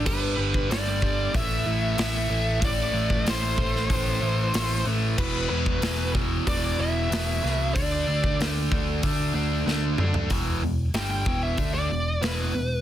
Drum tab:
CC |x---------------|----------------|x---------------|----------------|
HH |----o---o---o---|o---o---o---o---|----o---o---o---|o---o---o-------|
SD |----o-------o---|----o--o----o---|----o-------o-o-|----o-------o---|
T2 |----------------|----------------|----------------|--------------o-|
FT |----------------|----------------|----------------|---------------o|
BD |o--o--o-o-------|o--o--o-o-------|o--o--o-o-------|o--o--o-o-------|

CC |----------------|
HH |o---o---o---o---|
SD |----o-------o---|
T2 |----------------|
FT |----------------|
BD |o-----o-o-------|